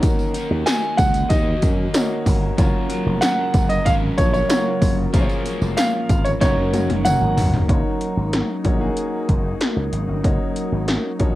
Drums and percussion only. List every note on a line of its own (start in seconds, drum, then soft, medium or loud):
0.03 kick loud
0.03 closed hi-hat loud
0.03 tambourine medium
0.19 tambourine soft
0.34 closed hi-hat medium
0.34 tambourine soft
0.67 snare loud
0.67 closed hi-hat medium
0.67 tambourine medium
0.98 kick loud
0.98 closed hi-hat medium
0.98 tambourine medium
1.14 closed hi-hat medium
1.14 tambourine soft
1.30 kick medium
1.30 closed hi-hat medium
1.30 tambourine soft
1.62 kick medium
1.62 closed hi-hat medium
1.62 tambourine soft
1.94 snare loud
1.94 closed hi-hat medium
1.94 tambourine medium
2.26 kick medium
2.26 open hi-hat medium
2.26 tambourine medium
2.58 kick loud
2.58 closed hi-hat loud
2.58 tambourine medium
2.90 closed hi-hat medium
2.90 tambourine soft
3.22 snare loud
3.22 closed hi-hat medium
3.22 tambourine medium
3.54 kick loud
3.54 closed hi-hat medium
3.54 tambourine medium
3.70 closed hi-hat medium
3.70 tambourine soft
3.86 kick medium
3.86 closed hi-hat medium
3.86 tambourine soft
4.18 kick medium
4.18 closed hi-hat medium
4.18 tambourine soft
4.34 tambourine soft
4.50 snare loud
4.50 closed hi-hat medium
4.50 tambourine medium
4.82 kick medium
4.82 open hi-hat medium
4.82 tambourine medium
5.14 kick loud
5.14 closed hi-hat medium
5.14 tambourine soft
5.29 tambourine soft
5.46 closed hi-hat medium
5.46 tambourine soft
5.62 tambourine soft
5.77 snare medium
5.77 closed hi-hat medium
5.77 tambourine medium
6.09 kick loud
6.09 closed hi-hat medium
6.09 tambourine medium
6.25 closed hi-hat medium
6.25 tambourine soft
6.41 kick medium
6.41 snare medium
6.41 closed hi-hat medium
6.41 tambourine medium
6.74 closed hi-hat medium
6.74 high tom medium
6.74 tambourine medium
6.90 closed hi-hat soft
6.90 high tom medium
7.05 closed hi-hat medium
7.05 mid tom medium
7.05 tambourine medium
7.37 floor tom loud
7.37 open hi-hat medium
7.37 tambourine medium
7.54 floor tom loud
7.69 kick loud
7.69 closed hi-hat medium
8.01 closed hi-hat medium
8.33 snare medium
8.33 closed hi-hat medium
8.65 kick medium
8.65 closed hi-hat medium
8.97 closed hi-hat medium
9.29 kick medium
9.29 closed hi-hat medium
9.61 snare loud
9.61 closed hi-hat medium
9.93 closed hi-hat medium
10.24 kick loud
10.24 closed hi-hat medium
10.56 closed hi-hat medium
10.88 snare medium
10.88 closed hi-hat medium
11.20 kick medium
11.20 closed hi-hat medium